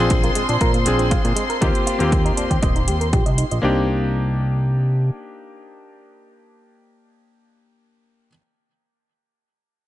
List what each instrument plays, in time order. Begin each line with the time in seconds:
Already playing: electric grand piano C4, violin section C5 C6
0.00 analog synth bass A#1, electric grand piano D4 F4 G#4
0.10 kick, closed hi-hat
0.24 clean electric guitar A#3, closed hi-hat
0.35 analog synth bass A#1, clean electric guitar G#3, closed hi-hat
0.49 analog synth bass A#1, clean electric guitar D4, closed hi-hat
0.61 analog synth bass A#2, clean electric guitar A#4, kick, closed hi-hat
0.74 clean electric guitar A#3, closed hi-hat
0.85 analog synth bass A#1, electric grand piano C4 D4 F4 G#4, clean electric guitar C4, closed hi-hat
0.99 clean electric guitar F3, closed hi-hat
1.11 clean electric guitar F4, kick, closed hi-hat
1.25 analog synth bass A#2, closed hi-hat
1.36 clean electric guitar G#3, closed hi-hat
1.50 clean electric guitar A#4, closed hi-hat
1.61 analog synth bass D#2, electric grand piano A#3 C4 F4 G4, clean electric guitar D#4, kick, closed hi-hat
1.75 closed hi-hat
1.87 clean electric guitar F4, closed hi-hat
1.99 analog synth bass D#2, electric grand piano A#3 C4 F4 G4, clean electric guitar A#3, closed hi-hat
2.12 kick, closed hi-hat
2.25 clean electric guitar D#4, closed hi-hat
2.37 analog synth bass D#2, clean electric guitar D4, closed hi-hat
2.50 analog synth bass D#2, clean electric guitar G4, kick, closed hi-hat
2.62 analog synth bass D#1, clean electric guitar D#5, kick, closed hi-hat
2.76 clean electric guitar D#4, closed hi-hat
2.88 analog synth bass D#2, clean electric guitar G4, closed hi-hat
3.01 clean electric guitar A#4, closed hi-hat
3.13 analog synth bass A#1, clean electric guitar G4, kick, closed hi-hat
3.26 analog synth bass C2, clean electric guitar D#5, closed hi-hat
3.38 clean electric guitar D#4, closed hi-hat
3.51 analog synth bass A#1, clean electric guitar D#5, closed hi-hat
3.62 analog synth bass C2, electric grand piano A#3 D4 D#4 G4, clean electric guitar C4